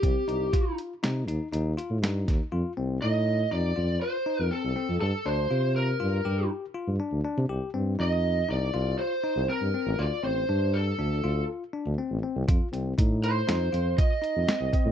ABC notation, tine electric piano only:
X:1
M:5/4
L:1/8
Q:1/4=120
K:Cdor
V:1 name="Tine electric piano"
C E F2 E E E F E2 | F C E2 E F2 E C C | A D F2 F G2 F D D | G C E2 E F2 E C C |
F C D2 D F2 D C C | F C E2 E F2 E C C |]